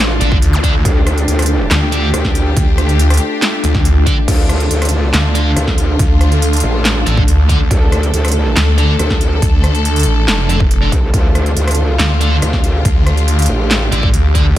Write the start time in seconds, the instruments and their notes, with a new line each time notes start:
Already playing: wobble bass A1, string section A3 D4 F4, ambient pad D4 F4
0.21 detuned saw bass A1, distorted electric guitar D4 A4 D5, closed hi-hat
0.32 kick
0.42 detuned saw bass D2, closed hi-hat
0.53 zap
0.63 distorted electric guitar D4 A4 D5, kick, closed hi-hat
0.85 wobble bass D2, string section G4, kick, closed hi-hat
1.07 cross-stick, closed hi-hat
1.18 closed hi-hat
1.28 wobble bass D2, closed hi-hat
1.39 cross-stick, closed hi-hat
1.42 closed hi-hat
1.46 closed hi-hat
1.71 detuned saw bass D2, snare, clap, closed hi-hat
1.92 distorted electric guitar D4 A4 D5, closed hi-hat
2.14 wobble bass D2, cross-stick, closed hi-hat
2.25 kick, snare
2.35 closed hi-hat
2.56 detuned saw bass D2, kick, closed hi-hat
2.78 cross-stick, closed hi-hat
2.89 closed hi-hat
2.99 closed hi-hat
3.10 cross-stick, closed hi-hat
3.14 closed hi-hat
3.17 closed hi-hat
3.42 snare, clap, closed hi-hat
3.64 detuned saw bass D2, closed hi-hat
3.75 kick, snare
3.85 closed hi-hat
4.06 distorted electric guitar D4 A4 D5, kick, closed hi-hat
4.28 wobble bass D2, string section F4, kick, closed hi-hat, crash
4.49 cross-stick, closed hi-hat
4.60 closed hi-hat
4.67 wobble bass D2, ambient pad A4, closed hi-hat
4.82 cross-stick, closed hi-hat
4.85 closed hi-hat
4.89 closed hi-hat
5.14 detuned saw bass D2, snare, clap, closed hi-hat
5.35 distorted electric guitar D4 A4 D5, closed hi-hat
5.56 wobble bass D2, cross-stick, closed hi-hat
5.67 kick, snare
5.78 closed hi-hat
5.99 detuned saw bass D2, kick, closed hi-hat
6.21 cross-stick, closed hi-hat
6.32 closed hi-hat
6.42 closed hi-hat
6.53 closed hi-hat
6.57 closed hi-hat
6.60 wobble bass A1, closed hi-hat
6.85 snare, clap, closed hi-hat
7.06 detuned saw bass A1, distorted electric guitar D4 A4 D5, closed hi-hat
7.17 kick
7.28 detuned saw bass D2, closed hi-hat
7.49 distorted electric guitar D4 A4 D5, kick, closed hi-hat
7.71 wobble bass D2, string section A4, kick, closed hi-hat
7.92 cross-stick, closed hi-hat
8.03 closed hi-hat
8.14 wobble bass D2, closed hi-hat
8.25 cross-stick, closed hi-hat
8.28 closed hi-hat
8.32 closed hi-hat
8.56 detuned saw bass D2, snare, clap, closed hi-hat
8.78 distorted electric guitar D4 A4 D5, closed hi-hat
8.99 wobble bass D2, cross-stick, closed hi-hat
9.10 kick, snare
9.21 closed hi-hat
9.42 detuned saw bass D2, kick, closed hi-hat
9.64 cross-stick, closed hi-hat
9.75 closed hi-hat
9.85 closed hi-hat
9.96 closed hi-hat
9.99 closed hi-hat
10.03 detuned saw bass A1, closed hi-hat
10.28 detuned saw bass F1, snare, clap, closed hi-hat
10.49 distorted electric guitar D4 A4 D5, closed hi-hat
10.60 kick
10.71 closed hi-hat
10.82 distorted electric guitar D4 A4 D5
10.92 wobble bass C2, kick, closed hi-hat
11.14 wobble bass D2, string section F4, kick, closed hi-hat
11.35 cross-stick, closed hi-hat
11.46 closed hi-hat
11.53 wobble bass D2, ambient pad G4, closed hi-hat
11.68 cross-stick, closed hi-hat
11.71 closed hi-hat
11.75 closed hi-hat
11.99 detuned saw bass D2, snare, clap, closed hi-hat
12.21 distorted electric guitar D4 A4 D5, closed hi-hat
12.42 wobble bass D2, cross-stick, closed hi-hat
12.53 kick, snare
12.64 closed hi-hat
12.85 detuned saw bass D2, kick, closed hi-hat
13.07 cross-stick, closed hi-hat
13.17 closed hi-hat
13.28 closed hi-hat
13.39 closed hi-hat
13.42 closed hi-hat
13.46 wobble bass A1, closed hi-hat
13.71 snare, clap, closed hi-hat
13.92 detuned saw bass A1, distorted electric guitar D4 A4 D5, closed hi-hat
14.03 kick
14.14 detuned saw bass D2, closed hi-hat
14.35 distorted electric guitar D4 A4 D5, kick, closed hi-hat